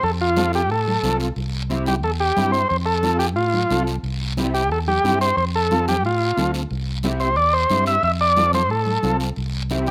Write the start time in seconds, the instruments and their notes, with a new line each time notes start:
0.03 fingered electric bass F2, transistor combo organ A4, high conga, long guiro
0.21 transistor combo organ F4
0.36 clean electric guitar C4 F4 A4, high conga, short guiro
0.53 transistor combo organ G4, short guiro
0.70 fingered electric bass A2, transistor combo organ A4, high conga, long guiro
0.88 high conga
1.03 fingered electric bass C2, clean electric guitar C4 F4 A4, high conga, short guiro
1.20 short guiro
1.36 fingered electric bass C2, high conga, long guiro
1.70 clean electric guitar C4 E4 G4, high conga, short guiro
1.86 transistor combo organ G4, high conga, short guiro
2.03 fingered electric bass E2, transistor combo organ A4, high conga, long guiro
2.20 transistor combo organ G4
2.36 fingered electric bass G2, clean electric guitar C4 E4 G4, high conga, short guiro
2.52 transistor combo organ C5, short guiro
2.69 fingered electric bass F2, transistor combo organ C5, high conga, long guiro
2.86 transistor combo organ A4
3.03 clean electric guitar C4 F4 A4, high conga, short guiro
3.19 transistor combo organ G4, short guiro
3.36 fingered electric bass A2, transistor combo organ F4, high conga, long guiro
3.54 high conga
3.70 fingered electric bass C2, clean electric guitar C4 F4 A4, high conga, short guiro
3.87 short guiro
4.03 fingered electric bass C2, high conga, long guiro
4.37 clean electric guitar C4 E4 G4, high conga, short guiro
4.54 transistor combo organ G4, short guiro
4.71 fingered electric bass E2, transistor combo organ A4, high conga, long guiro
4.88 transistor combo organ G4, high conga
5.04 fingered electric bass G2, clean electric guitar C4 E4 G4, high conga, short guiro
5.21 transistor combo organ C5, short guiro
5.37 fingered electric bass F2, transistor combo organ C5, high conga, long guiro
5.55 transistor combo organ A4
5.71 clean electric guitar C4 F4 A4, high conga, short guiro
5.88 transistor combo organ G4, high conga, short guiro
6.05 fingered electric bass A2, transistor combo organ F4, high conga, long guiro
6.37 fingered electric bass D2, clean electric guitar C4 F4 A4, high conga, short guiro
6.54 short guiro
6.71 fingered electric bass C2, high conga, long guiro
7.03 clean electric guitar C4 E4 G4, high conga, short guiro
7.20 transistor combo organ C5, short guiro
7.36 fingered electric bass E2, transistor combo organ D5, high conga, long guiro
7.53 transistor combo organ C5
7.70 fingered electric bass G2, clean electric guitar C4 E4 G4, high conga, short guiro
7.86 transistor combo organ E5, short guiro
8.03 fingered electric bass F2, transistor combo organ E5, high conga, long guiro
8.21 transistor combo organ D5
8.36 clean electric guitar C4 F4 A4, high conga, short guiro
8.53 transistor combo organ C5, high conga, short guiro
8.70 fingered electric bass A2, transistor combo organ A4, high conga, long guiro
8.86 high conga
9.03 fingered electric bass C2, clean electric guitar C4 F4 A4, high conga, short guiro
9.20 short guiro
9.36 fingered electric bass C2, high conga, long guiro
9.70 clean electric guitar C4 E4 G4, high conga, short guiro
9.87 transistor combo organ G4, high conga, short guiro